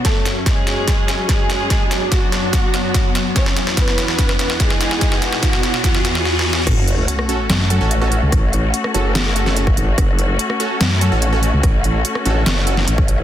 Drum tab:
CC |------------------------------------------------|------------------------------------------------|------------------------------------------------|------------------------------------------------|
HH |x-----x-----x-----x-----x-----x-----x-----x-----|x-----x-----x-----x-----x-----x-----x-----x-----|x-----x-----x-----x-----x-----x-----x-----x-----|x-----x-----x-----x-----x-----x-----------------|
SD |o-----o-----o-----o-----o-----o-----o-----o-----|o-----o-----o-----o-----o-----o-----o-----o-----|o--o--o--o--o--o--o--o--o--o--o--o--o--o--o--o--|o--o--o--o--o--o--o--o--o--o--o--o--o---o---o---|
BD |o-----------o-----------o-----------o-----------|o-----------o-----------o-----------o-----------|o-----------o-----------o-----------o-----------|o-----------o-----------o-----------------------|

CC |x-----------------------------------------------|------------------------------------------------|------------------------------------------------|------------------------------------------------|
HH |x-----x-----x-----x-----x-----x-----x-----x-----|x-----x-----x-----x-----x-----x-----x-----x-----|x-----x-----x-----x-----x-----x-----x-----x-----|x-----x-----x-----x-----x-----x-----x-----x-----|
SD |r--------------r--------o--------------r--------|r--------------r--------o--------o-----r--------|r--------------r--------o--------------r--------|r--------------r--------o--------o-----r--------|
BD |o-----------------------------------------------|o--------------------------------------o--------|o-----------------------------------------------|o--------------------------------------o--------|